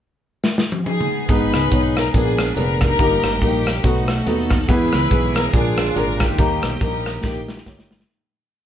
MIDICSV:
0, 0, Header, 1, 6, 480
1, 0, Start_track
1, 0, Key_signature, 5, "minor"
1, 0, Tempo, 424929
1, 1459, Time_signature, 4, 2, 24, 8
1, 9776, End_track
2, 0, Start_track
2, 0, Title_t, "String section"
2, 0, Program_c, 0, 48
2, 982, Note_on_c, 0, 68, 87
2, 987, Note_on_c, 0, 59, 65
2, 989, Note_on_c, 0, 63, 59
2, 1428, Note_off_c, 0, 68, 0
2, 1453, Note_off_c, 0, 63, 0
2, 1461, Note_on_c, 0, 71, 102
2, 1467, Note_on_c, 0, 63, 69
2, 1470, Note_on_c, 0, 68, 66
2, 1900, Note_off_c, 0, 59, 0
2, 2222, Note_off_c, 0, 71, 0
2, 2223, Note_on_c, 0, 70, 87
2, 2380, Note_off_c, 0, 63, 0
2, 2382, Note_off_c, 0, 68, 0
2, 2423, Note_off_c, 0, 70, 0
2, 2429, Note_on_c, 0, 68, 82
2, 2434, Note_on_c, 0, 62, 60
2, 2436, Note_on_c, 0, 59, 64
2, 2872, Note_off_c, 0, 68, 0
2, 2901, Note_on_c, 0, 70, 87
2, 3162, Note_off_c, 0, 70, 0
2, 3179, Note_on_c, 0, 70, 92
2, 3186, Note_on_c, 0, 67, 67
2, 3187, Note_on_c, 0, 63, 64
2, 3343, Note_off_c, 0, 62, 0
2, 3344, Note_off_c, 0, 59, 0
2, 3816, Note_off_c, 0, 70, 0
2, 3845, Note_off_c, 0, 67, 0
2, 3855, Note_off_c, 0, 63, 0
2, 3859, Note_on_c, 0, 67, 80
2, 3867, Note_on_c, 0, 58, 63
2, 3868, Note_on_c, 0, 63, 59
2, 4311, Note_off_c, 0, 58, 0
2, 4311, Note_off_c, 0, 63, 0
2, 4340, Note_off_c, 0, 67, 0
2, 4348, Note_on_c, 0, 66, 74
2, 4349, Note_on_c, 0, 57, 60
2, 4352, Note_on_c, 0, 63, 62
2, 4607, Note_off_c, 0, 66, 0
2, 4620, Note_on_c, 0, 66, 73
2, 4806, Note_off_c, 0, 66, 0
2, 4817, Note_off_c, 0, 63, 0
2, 4824, Note_on_c, 0, 69, 76
2, 4831, Note_on_c, 0, 63, 59
2, 4832, Note_on_c, 0, 66, 57
2, 5258, Note_off_c, 0, 57, 0
2, 5271, Note_off_c, 0, 63, 0
2, 5272, Note_off_c, 0, 66, 0
2, 5300, Note_on_c, 0, 71, 97
2, 5301, Note_off_c, 0, 69, 0
2, 5302, Note_on_c, 0, 64, 63
2, 5305, Note_on_c, 0, 68, 66
2, 6057, Note_off_c, 0, 71, 0
2, 6057, Note_on_c, 0, 70, 81
2, 6213, Note_off_c, 0, 64, 0
2, 6215, Note_off_c, 0, 68, 0
2, 6256, Note_on_c, 0, 68, 77
2, 6257, Note_off_c, 0, 70, 0
2, 6257, Note_on_c, 0, 62, 64
2, 6261, Note_on_c, 0, 65, 59
2, 6702, Note_off_c, 0, 68, 0
2, 6738, Note_on_c, 0, 70, 86
2, 7016, Note_off_c, 0, 70, 0
2, 7019, Note_on_c, 0, 67, 78
2, 7024, Note_on_c, 0, 58, 58
2, 7024, Note_on_c, 0, 63, 59
2, 7170, Note_off_c, 0, 62, 0
2, 7172, Note_off_c, 0, 65, 0
2, 7688, Note_off_c, 0, 67, 0
2, 7689, Note_off_c, 0, 63, 0
2, 7702, Note_on_c, 0, 67, 56
2, 7703, Note_on_c, 0, 63, 60
2, 7703, Note_on_c, 0, 70, 82
2, 7933, Note_off_c, 0, 58, 0
2, 8145, Note_off_c, 0, 70, 0
2, 8171, Note_off_c, 0, 67, 0
2, 8172, Note_off_c, 0, 63, 0
2, 8184, Note_on_c, 0, 58, 50
2, 8185, Note_on_c, 0, 63, 48
2, 8185, Note_on_c, 0, 67, 77
2, 8440, Note_off_c, 0, 67, 0
2, 8444, Note_off_c, 0, 58, 0
2, 8444, Note_off_c, 0, 63, 0
2, 8457, Note_on_c, 0, 58, 51
2, 8457, Note_on_c, 0, 63, 54
2, 8457, Note_on_c, 0, 67, 73
2, 8902, Note_off_c, 0, 67, 0
2, 9092, Note_off_c, 0, 58, 0
2, 9092, Note_off_c, 0, 63, 0
2, 9776, End_track
3, 0, Start_track
3, 0, Title_t, "Grand piano"
3, 0, Program_c, 1, 0
3, 1450, Note_on_c, 1, 59, 83
3, 1460, Note_on_c, 1, 63, 74
3, 1462, Note_on_c, 1, 44, 55
3, 1466, Note_on_c, 1, 68, 75
3, 1471, Note_on_c, 1, 71, 83
3, 1782, Note_off_c, 1, 59, 0
3, 1786, Note_off_c, 1, 63, 0
3, 1789, Note_off_c, 1, 68, 0
3, 1792, Note_off_c, 1, 71, 0
3, 1926, Note_on_c, 1, 59, 61
3, 1936, Note_on_c, 1, 63, 59
3, 1942, Note_on_c, 1, 68, 53
3, 1950, Note_on_c, 1, 73, 68
3, 2177, Note_off_c, 1, 44, 0
3, 2260, Note_off_c, 1, 59, 0
3, 2265, Note_off_c, 1, 63, 0
3, 2268, Note_off_c, 1, 68, 0
3, 2272, Note_off_c, 1, 73, 0
3, 2414, Note_on_c, 1, 59, 64
3, 2422, Note_on_c, 1, 62, 58
3, 2427, Note_on_c, 1, 46, 52
3, 2428, Note_on_c, 1, 68, 59
3, 2437, Note_on_c, 1, 70, 65
3, 2744, Note_off_c, 1, 59, 0
3, 2748, Note_off_c, 1, 62, 0
3, 2751, Note_off_c, 1, 68, 0
3, 2755, Note_off_c, 1, 70, 0
3, 2893, Note_on_c, 1, 59, 59
3, 2899, Note_on_c, 1, 62, 58
3, 2905, Note_on_c, 1, 68, 62
3, 2909, Note_on_c, 1, 71, 73
3, 3139, Note_off_c, 1, 46, 0
3, 3223, Note_off_c, 1, 59, 0
3, 3226, Note_off_c, 1, 62, 0
3, 3230, Note_off_c, 1, 68, 0
3, 3232, Note_off_c, 1, 71, 0
3, 3378, Note_on_c, 1, 58, 83
3, 3383, Note_on_c, 1, 63, 77
3, 3385, Note_on_c, 1, 43, 54
3, 3389, Note_on_c, 1, 67, 83
3, 3397, Note_on_c, 1, 70, 95
3, 3706, Note_off_c, 1, 58, 0
3, 3708, Note_off_c, 1, 63, 0
3, 3711, Note_off_c, 1, 67, 0
3, 3715, Note_off_c, 1, 70, 0
3, 3855, Note_on_c, 1, 58, 62
3, 3859, Note_on_c, 1, 63, 59
3, 3865, Note_on_c, 1, 67, 56
3, 3874, Note_on_c, 1, 70, 67
3, 4097, Note_off_c, 1, 43, 0
3, 4184, Note_off_c, 1, 58, 0
3, 4186, Note_off_c, 1, 63, 0
3, 4189, Note_off_c, 1, 67, 0
3, 4194, Note_off_c, 1, 70, 0
3, 4330, Note_on_c, 1, 59, 68
3, 4337, Note_on_c, 1, 63, 55
3, 4339, Note_on_c, 1, 47, 54
3, 4342, Note_on_c, 1, 66, 56
3, 4352, Note_on_c, 1, 69, 72
3, 4661, Note_off_c, 1, 59, 0
3, 4664, Note_off_c, 1, 63, 0
3, 4667, Note_off_c, 1, 66, 0
3, 4672, Note_off_c, 1, 69, 0
3, 4811, Note_on_c, 1, 59, 68
3, 4816, Note_on_c, 1, 63, 61
3, 4825, Note_on_c, 1, 66, 61
3, 4829, Note_on_c, 1, 69, 69
3, 5053, Note_off_c, 1, 47, 0
3, 5141, Note_off_c, 1, 59, 0
3, 5143, Note_off_c, 1, 63, 0
3, 5147, Note_off_c, 1, 66, 0
3, 5150, Note_off_c, 1, 69, 0
3, 5286, Note_on_c, 1, 59, 87
3, 5294, Note_on_c, 1, 64, 81
3, 5296, Note_on_c, 1, 52, 60
3, 5302, Note_on_c, 1, 68, 78
3, 5305, Note_on_c, 1, 71, 101
3, 5618, Note_off_c, 1, 59, 0
3, 5622, Note_off_c, 1, 64, 0
3, 5626, Note_off_c, 1, 68, 0
3, 5627, Note_off_c, 1, 71, 0
3, 5762, Note_on_c, 1, 59, 63
3, 5768, Note_on_c, 1, 64, 57
3, 5773, Note_on_c, 1, 68, 60
3, 5779, Note_on_c, 1, 71, 71
3, 6010, Note_off_c, 1, 52, 0
3, 6095, Note_off_c, 1, 59, 0
3, 6098, Note_off_c, 1, 64, 0
3, 6100, Note_off_c, 1, 68, 0
3, 6104, Note_off_c, 1, 71, 0
3, 6248, Note_on_c, 1, 62, 67
3, 6254, Note_on_c, 1, 65, 56
3, 6258, Note_on_c, 1, 46, 58
3, 6261, Note_on_c, 1, 68, 61
3, 6270, Note_on_c, 1, 70, 68
3, 6578, Note_off_c, 1, 62, 0
3, 6581, Note_off_c, 1, 65, 0
3, 6584, Note_off_c, 1, 68, 0
3, 6588, Note_off_c, 1, 70, 0
3, 6727, Note_on_c, 1, 62, 65
3, 6734, Note_on_c, 1, 65, 57
3, 6740, Note_on_c, 1, 68, 59
3, 6749, Note_on_c, 1, 70, 68
3, 6970, Note_off_c, 1, 46, 0
3, 7057, Note_off_c, 1, 62, 0
3, 7060, Note_off_c, 1, 65, 0
3, 7063, Note_off_c, 1, 68, 0
3, 7068, Note_off_c, 1, 70, 0
3, 7211, Note_on_c, 1, 58, 80
3, 7216, Note_on_c, 1, 63, 76
3, 7219, Note_on_c, 1, 51, 54
3, 7223, Note_on_c, 1, 67, 75
3, 7229, Note_on_c, 1, 70, 93
3, 7538, Note_off_c, 1, 58, 0
3, 7541, Note_off_c, 1, 63, 0
3, 7544, Note_off_c, 1, 67, 0
3, 7547, Note_off_c, 1, 70, 0
3, 7688, Note_on_c, 1, 58, 63
3, 7694, Note_on_c, 1, 63, 53
3, 7700, Note_on_c, 1, 67, 59
3, 7710, Note_on_c, 1, 70, 73
3, 7931, Note_off_c, 1, 51, 0
3, 8017, Note_off_c, 1, 58, 0
3, 8020, Note_off_c, 1, 63, 0
3, 8023, Note_off_c, 1, 67, 0
3, 8028, Note_off_c, 1, 70, 0
3, 8169, Note_on_c, 1, 58, 64
3, 8177, Note_on_c, 1, 63, 54
3, 8182, Note_on_c, 1, 67, 55
3, 8188, Note_on_c, 1, 70, 61
3, 8498, Note_off_c, 1, 58, 0
3, 8501, Note_off_c, 1, 63, 0
3, 8504, Note_off_c, 1, 67, 0
3, 8507, Note_off_c, 1, 70, 0
3, 8653, Note_on_c, 1, 58, 62
3, 8658, Note_on_c, 1, 63, 52
3, 8664, Note_on_c, 1, 67, 59
3, 8672, Note_on_c, 1, 73, 69
3, 8980, Note_off_c, 1, 58, 0
3, 8982, Note_off_c, 1, 63, 0
3, 8986, Note_off_c, 1, 67, 0
3, 8990, Note_off_c, 1, 73, 0
3, 9776, End_track
4, 0, Start_track
4, 0, Title_t, "Tonewheel organ"
4, 0, Program_c, 2, 16
4, 1450, Note_on_c, 2, 63, 50
4, 1451, Note_on_c, 2, 56, 55
4, 1451, Note_on_c, 2, 59, 47
4, 1452, Note_on_c, 2, 71, 62
4, 2398, Note_off_c, 2, 56, 0
4, 2398, Note_off_c, 2, 59, 0
4, 2398, Note_off_c, 2, 63, 0
4, 2399, Note_off_c, 2, 71, 0
4, 2418, Note_on_c, 2, 56, 53
4, 2418, Note_on_c, 2, 70, 55
4, 2422, Note_on_c, 2, 59, 48
4, 2422, Note_on_c, 2, 62, 48
4, 3360, Note_off_c, 2, 70, 0
4, 3361, Note_off_c, 2, 56, 0
4, 3363, Note_off_c, 2, 59, 0
4, 3363, Note_off_c, 2, 62, 0
4, 3374, Note_on_c, 2, 70, 61
4, 3377, Note_on_c, 2, 58, 51
4, 3377, Note_on_c, 2, 63, 53
4, 3379, Note_on_c, 2, 55, 57
4, 4318, Note_off_c, 2, 70, 0
4, 4319, Note_off_c, 2, 58, 0
4, 4319, Note_off_c, 2, 63, 0
4, 4320, Note_off_c, 2, 55, 0
4, 4335, Note_on_c, 2, 69, 59
4, 4336, Note_on_c, 2, 54, 56
4, 4337, Note_on_c, 2, 59, 51
4, 4340, Note_on_c, 2, 63, 51
4, 5277, Note_off_c, 2, 54, 0
4, 5277, Note_off_c, 2, 69, 0
4, 5278, Note_off_c, 2, 59, 0
4, 5279, Note_off_c, 2, 63, 0
4, 5293, Note_on_c, 2, 67, 52
4, 5294, Note_on_c, 2, 59, 54
4, 5295, Note_on_c, 2, 52, 57
4, 5296, Note_on_c, 2, 56, 53
4, 5350, Note_on_c, 2, 68, 61
4, 5363, Note_off_c, 2, 67, 0
4, 6235, Note_off_c, 2, 59, 0
4, 6236, Note_off_c, 2, 52, 0
4, 6236, Note_off_c, 2, 56, 0
4, 6253, Note_on_c, 2, 56, 51
4, 6254, Note_on_c, 2, 65, 62
4, 6256, Note_on_c, 2, 58, 49
4, 6257, Note_on_c, 2, 50, 54
4, 6264, Note_off_c, 2, 68, 0
4, 7194, Note_off_c, 2, 56, 0
4, 7194, Note_off_c, 2, 65, 0
4, 7195, Note_off_c, 2, 58, 0
4, 7196, Note_off_c, 2, 50, 0
4, 7204, Note_on_c, 2, 55, 50
4, 7206, Note_on_c, 2, 66, 48
4, 7209, Note_on_c, 2, 51, 60
4, 7210, Note_on_c, 2, 58, 55
4, 7263, Note_on_c, 2, 67, 56
4, 7278, Note_off_c, 2, 66, 0
4, 9091, Note_off_c, 2, 55, 0
4, 9094, Note_off_c, 2, 51, 0
4, 9094, Note_off_c, 2, 58, 0
4, 9121, Note_off_c, 2, 67, 0
4, 9776, End_track
5, 0, Start_track
5, 0, Title_t, "Fretless electric bass"
5, 0, Program_c, 3, 35
5, 1458, Note_on_c, 3, 32, 76
5, 1697, Note_off_c, 3, 32, 0
5, 1737, Note_on_c, 3, 37, 70
5, 1909, Note_off_c, 3, 37, 0
5, 1941, Note_on_c, 3, 35, 74
5, 2350, Note_off_c, 3, 35, 0
5, 2420, Note_on_c, 3, 34, 76
5, 2829, Note_off_c, 3, 34, 0
5, 2895, Note_on_c, 3, 29, 79
5, 3306, Note_off_c, 3, 29, 0
5, 3381, Note_on_c, 3, 31, 95
5, 3619, Note_off_c, 3, 31, 0
5, 3655, Note_on_c, 3, 32, 75
5, 3828, Note_off_c, 3, 32, 0
5, 3863, Note_on_c, 3, 34, 82
5, 4270, Note_off_c, 3, 34, 0
5, 4340, Note_on_c, 3, 35, 85
5, 4748, Note_off_c, 3, 35, 0
5, 4816, Note_on_c, 3, 39, 79
5, 5225, Note_off_c, 3, 39, 0
5, 5296, Note_on_c, 3, 40, 90
5, 5535, Note_off_c, 3, 40, 0
5, 5579, Note_on_c, 3, 37, 73
5, 5749, Note_off_c, 3, 37, 0
5, 5774, Note_on_c, 3, 35, 82
5, 6183, Note_off_c, 3, 35, 0
5, 6251, Note_on_c, 3, 34, 83
5, 6661, Note_off_c, 3, 34, 0
5, 6732, Note_on_c, 3, 32, 82
5, 7141, Note_off_c, 3, 32, 0
5, 7216, Note_on_c, 3, 39, 85
5, 7453, Note_off_c, 3, 39, 0
5, 7497, Note_on_c, 3, 35, 77
5, 7666, Note_off_c, 3, 35, 0
5, 7695, Note_on_c, 3, 34, 84
5, 8103, Note_off_c, 3, 34, 0
5, 8176, Note_on_c, 3, 34, 77
5, 8583, Note_off_c, 3, 34, 0
5, 8657, Note_on_c, 3, 31, 81
5, 9064, Note_off_c, 3, 31, 0
5, 9776, End_track
6, 0, Start_track
6, 0, Title_t, "Drums"
6, 494, Note_on_c, 9, 38, 66
6, 606, Note_off_c, 9, 38, 0
6, 656, Note_on_c, 9, 38, 71
6, 769, Note_off_c, 9, 38, 0
6, 815, Note_on_c, 9, 48, 77
6, 928, Note_off_c, 9, 48, 0
6, 974, Note_on_c, 9, 48, 75
6, 1087, Note_off_c, 9, 48, 0
6, 1136, Note_on_c, 9, 47, 73
6, 1249, Note_off_c, 9, 47, 0
6, 1457, Note_on_c, 9, 36, 93
6, 1457, Note_on_c, 9, 42, 62
6, 1570, Note_off_c, 9, 36, 0
6, 1570, Note_off_c, 9, 42, 0
6, 1736, Note_on_c, 9, 42, 54
6, 1737, Note_on_c, 9, 37, 98
6, 1849, Note_off_c, 9, 37, 0
6, 1849, Note_off_c, 9, 42, 0
6, 1940, Note_on_c, 9, 36, 76
6, 1943, Note_on_c, 9, 42, 62
6, 2053, Note_off_c, 9, 36, 0
6, 2056, Note_off_c, 9, 42, 0
6, 2219, Note_on_c, 9, 42, 62
6, 2223, Note_on_c, 9, 37, 94
6, 2332, Note_off_c, 9, 42, 0
6, 2336, Note_off_c, 9, 37, 0
6, 2420, Note_on_c, 9, 36, 90
6, 2421, Note_on_c, 9, 42, 78
6, 2533, Note_off_c, 9, 36, 0
6, 2534, Note_off_c, 9, 42, 0
6, 2694, Note_on_c, 9, 37, 101
6, 2698, Note_on_c, 9, 42, 55
6, 2807, Note_off_c, 9, 37, 0
6, 2811, Note_off_c, 9, 42, 0
6, 2904, Note_on_c, 9, 42, 79
6, 3017, Note_off_c, 9, 42, 0
6, 3174, Note_on_c, 9, 37, 84
6, 3179, Note_on_c, 9, 36, 82
6, 3181, Note_on_c, 9, 42, 59
6, 3287, Note_off_c, 9, 37, 0
6, 3292, Note_off_c, 9, 36, 0
6, 3294, Note_off_c, 9, 42, 0
6, 3379, Note_on_c, 9, 36, 84
6, 3380, Note_on_c, 9, 42, 66
6, 3492, Note_off_c, 9, 36, 0
6, 3493, Note_off_c, 9, 42, 0
6, 3656, Note_on_c, 9, 37, 97
6, 3656, Note_on_c, 9, 42, 51
6, 3769, Note_off_c, 9, 37, 0
6, 3769, Note_off_c, 9, 42, 0
6, 3859, Note_on_c, 9, 42, 65
6, 3860, Note_on_c, 9, 36, 79
6, 3972, Note_off_c, 9, 42, 0
6, 3973, Note_off_c, 9, 36, 0
6, 4141, Note_on_c, 9, 42, 56
6, 4145, Note_on_c, 9, 37, 99
6, 4254, Note_off_c, 9, 42, 0
6, 4258, Note_off_c, 9, 37, 0
6, 4336, Note_on_c, 9, 42, 75
6, 4338, Note_on_c, 9, 36, 90
6, 4449, Note_off_c, 9, 42, 0
6, 4451, Note_off_c, 9, 36, 0
6, 4609, Note_on_c, 9, 37, 101
6, 4612, Note_on_c, 9, 42, 53
6, 4722, Note_off_c, 9, 37, 0
6, 4725, Note_off_c, 9, 42, 0
6, 4819, Note_on_c, 9, 42, 77
6, 4932, Note_off_c, 9, 42, 0
6, 5089, Note_on_c, 9, 37, 82
6, 5095, Note_on_c, 9, 36, 83
6, 5096, Note_on_c, 9, 42, 64
6, 5202, Note_off_c, 9, 37, 0
6, 5208, Note_off_c, 9, 36, 0
6, 5209, Note_off_c, 9, 42, 0
6, 5292, Note_on_c, 9, 42, 62
6, 5294, Note_on_c, 9, 36, 91
6, 5405, Note_off_c, 9, 42, 0
6, 5407, Note_off_c, 9, 36, 0
6, 5565, Note_on_c, 9, 37, 90
6, 5565, Note_on_c, 9, 42, 56
6, 5678, Note_off_c, 9, 37, 0
6, 5678, Note_off_c, 9, 42, 0
6, 5769, Note_on_c, 9, 42, 61
6, 5774, Note_on_c, 9, 36, 84
6, 5882, Note_off_c, 9, 42, 0
6, 5887, Note_off_c, 9, 36, 0
6, 6050, Note_on_c, 9, 42, 58
6, 6054, Note_on_c, 9, 37, 103
6, 6163, Note_off_c, 9, 42, 0
6, 6167, Note_off_c, 9, 37, 0
6, 6250, Note_on_c, 9, 42, 78
6, 6253, Note_on_c, 9, 36, 96
6, 6362, Note_off_c, 9, 42, 0
6, 6366, Note_off_c, 9, 36, 0
6, 6526, Note_on_c, 9, 37, 106
6, 6530, Note_on_c, 9, 42, 57
6, 6639, Note_off_c, 9, 37, 0
6, 6643, Note_off_c, 9, 42, 0
6, 6737, Note_on_c, 9, 42, 74
6, 6850, Note_off_c, 9, 42, 0
6, 7006, Note_on_c, 9, 37, 90
6, 7012, Note_on_c, 9, 36, 74
6, 7014, Note_on_c, 9, 42, 55
6, 7119, Note_off_c, 9, 37, 0
6, 7125, Note_off_c, 9, 36, 0
6, 7127, Note_off_c, 9, 42, 0
6, 7211, Note_on_c, 9, 42, 62
6, 7213, Note_on_c, 9, 36, 92
6, 7324, Note_off_c, 9, 42, 0
6, 7326, Note_off_c, 9, 36, 0
6, 7488, Note_on_c, 9, 37, 101
6, 7488, Note_on_c, 9, 42, 58
6, 7601, Note_off_c, 9, 37, 0
6, 7601, Note_off_c, 9, 42, 0
6, 7694, Note_on_c, 9, 36, 83
6, 7694, Note_on_c, 9, 42, 60
6, 7807, Note_off_c, 9, 36, 0
6, 7807, Note_off_c, 9, 42, 0
6, 7974, Note_on_c, 9, 42, 61
6, 7978, Note_on_c, 9, 37, 88
6, 8087, Note_off_c, 9, 42, 0
6, 8091, Note_off_c, 9, 37, 0
6, 8174, Note_on_c, 9, 36, 93
6, 8174, Note_on_c, 9, 38, 47
6, 8287, Note_off_c, 9, 36, 0
6, 8287, Note_off_c, 9, 38, 0
6, 8455, Note_on_c, 9, 38, 59
6, 8556, Note_off_c, 9, 38, 0
6, 8556, Note_on_c, 9, 38, 51
6, 8657, Note_off_c, 9, 38, 0
6, 8657, Note_on_c, 9, 38, 69
6, 8658, Note_on_c, 9, 36, 82
6, 8770, Note_off_c, 9, 38, 0
6, 8771, Note_off_c, 9, 36, 0
6, 8798, Note_on_c, 9, 38, 62
6, 8911, Note_off_c, 9, 38, 0
6, 8934, Note_on_c, 9, 38, 84
6, 9038, Note_off_c, 9, 38, 0
6, 9038, Note_on_c, 9, 38, 72
6, 9151, Note_off_c, 9, 38, 0
6, 9776, End_track
0, 0, End_of_file